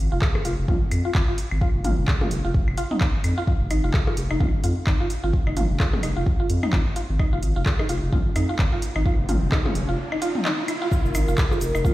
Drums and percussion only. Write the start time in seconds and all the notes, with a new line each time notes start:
0.22 kick, clap, percussion blips
0.35 percussion blips, claves
0.45 open hi-hat
0.68 kick, mid tom
0.91 open hi-hat, claves
1.15 kick, clap
1.38 open hi-hat
1.51 claves
1.61 kick
1.84 mid tom, open hi-hat
2.08 kick, clap, percussion blips, claves
2.21 mid tom, percussion blips
2.31 open hi-hat
2.54 kick
2.68 claves
2.77 open hi-hat
2.91 mid tom
3.01 kick, clap
3.24 open hi-hat, claves
3.47 kick
3.71 open hi-hat, claves
3.94 kick, clap, percussion blips
4.07 percussion blips
4.17 open hi-hat
4.31 claves
4.40 kick, mid tom
4.64 open hi-hat
4.87 kick, clap, claves
5.10 open hi-hat
5.33 kick
5.47 claves
5.57 mid tom, open hi-hat
5.80 kick, clap, percussion blips
5.93 mid tom, percussion blips
6.03 open hi-hat, claves
6.26 kick
6.50 open hi-hat
6.63 mid tom, claves
6.73 kick, clap
6.96 open hi-hat
7.19 kick, claves
7.43 open hi-hat
7.66 kick, clap, percussion blips
7.79 percussion blips, claves
7.89 open hi-hat
8.12 kick, mid tom
8.36 open hi-hat, claves
8.59 kick, clap
8.82 open hi-hat
8.96 claves
9.06 kick
9.29 mid tom, open hi-hat
9.52 kick, clap, percussion blips, claves
9.66 mid tom, percussion blips
9.75 open hi-hat
10.12 claves
10.22 open hi-hat
10.35 mid tom
10.45 clap
10.68 open hi-hat, claves
10.92 kick, shaker
11.05 shaker
11.15 open hi-hat, claves, shaker
11.28 shaker
11.38 kick, clap, percussion blips, shaker
11.51 percussion blips, shaker
11.61 open hi-hat, shaker
11.75 claves, shaker
11.85 kick, mid tom, shaker